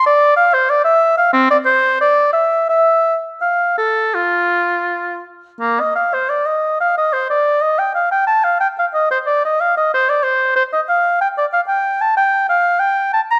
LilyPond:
\new Staff \with { instrumentName = "Oboe" } { \time 4/4 \key f \major \tempo 4 = 91 d''8 f''16 c''16 d''16 e''8 f''16 c'16 d''16 c''8 d''8 e''8 | e''8. r16 f''8 a'8 f'4. r8 | \key f \mixolydian bes16 ees''16 f''16 c''16 d''16 ees''8 f''16 ees''16 c''16 d''8 ees''16 g''16 f''16 g''16 | a''16 f''16 g''16 f''16 ees''16 c''16 d''16 ees''16 f''16 ees''16 c''16 d''16 c''8 c''16 ees''16 |
f''8 g''16 d''16 f''16 g''8 a''16 g''8 f''8 g''8 a''16 bes''16 | }